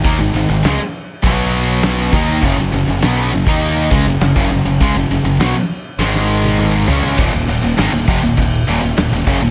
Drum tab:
CC |x---x---x---x---|x---x---x---x---|x---x-----------|x-x-x-x-x-x-x-x-|
SD |----o-------o---|----o-------o---|----o---oo------|----o-------o---|
T1 |----------------|----------------|-----------o----|----------------|
T2 |----------------|----------------|------------o---|----------------|
FT |----------------|----------------|--------------oo|----------------|
BD |o-------o-----o-|o------o--o--o--|o---------------|o-----o-o-----o-|